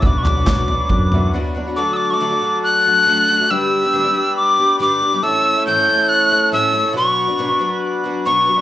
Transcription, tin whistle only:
0.01 0.07 E6 medium
0.06 0.19 D6 medium
0.18 0.24 C#6 medium
0.23 1.31 D6 medium
1.76 1.94 D6 medium
1.93 2.11 D6 medium
1.93 1.98 E6 medium
2.10 2.15 C#6 medium
2.10 2.59 D6 medium
2.64 3.52 F#6 loud
3.51 4.36 E6 loud
4.37 4.77 D6 loud
4.81 5.25 D6 loud
5.23 5.66 E6 loud
5.67 6.10 G6 loud
6.09 6.52 F#6 loud
6.53 6.93 E6 loud
6.97 7.79 C#6 medium
8.26 8.61 C#6 medium

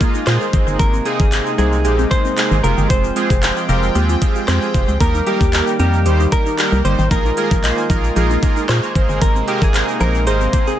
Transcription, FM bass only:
0.27 0.38 A#2 loud
0.53 0.64 G#1 loud
0.67 0.77 G1 loud
0.80 1.00 G#1 loud
1.20 1.41 G#1 loud
1.59 1.86 C2 medium
1.85 2.06 A#1 loud
2.51 2.61 G#1 loud
2.64 2.75 F1 loud
2.78 2.88 G1 medium
2.90 3.11 F1 loud
3.30 3.51 F1 loud
3.69 3.90 F1 loud
3.95 4.16 D#2 medium
4.48 4.59 F2 loud
4.74 4.85 F1 medium
4.88 4.98 C#2 medium
5.01 5.21 D#2 loud
5.41 5.62 D#2 medium
5.79 6.07 F2 medium
6.06 6.27 D#2 loud
6.72 6.82 C2 loud
6.85 6.96 G1 loud
6.99 7.09 G#1 loud
7.11 7.32 A#1 loud
7.51 7.72 A#1 loud
7.90 8.11 A#1 loud
8.16 8.37 A#1 loud
8.69 8.80 A#2 loud
8.95 9.06 G#1 loud
9.09 9.19 G1 loud
9.22 9.43 G#1 loud
9.62 9.83 G#1 medium
10.01 10.28 A#1 loud
10.27 10.48 G#1 loud

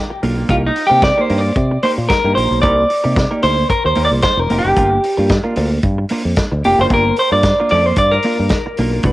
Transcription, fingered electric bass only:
0.23 0.43 B1 medium
0.49 0.69 C2 loud
0.91 1.11 C3 medium
1.30 1.50 G2 loud
1.56 1.76 C3 loud
1.98 2.07 A#2 medium
2.24 2.34 G2 medium
2.37 2.47 A#1 medium
2.51 2.63 B1 medium
2.63 2.83 C2 loud
3.05 3.25 C3 medium
3.44 3.64 D2 loud
3.85 3.94 D#2 medium
3.97 4.08 D#2 medium
4.11 4.21 C2 medium
4.37 4.47 E1 medium
4.51 4.61 F1 medium
4.64 4.74 F#1 medium
4.77 4.97 G1 loud
5.18 5.38 G2 medium
5.57 5.77 D2 loud
5.84 6.04 G2 loud
6.25 6.34 F2 medium
6.52 6.61 D2 medium
6.65 6.75 F1 medium
6.79 6.88 F#1 medium
6.90 7.11 G1 loud
7.32 7.52 G2 medium
7.72 7.92 F2 loud
7.97 8.18 G2 medium
8.39 8.49 G2 medium
8.79 8.98 B1 medium
9.04 9.12 C2 loud

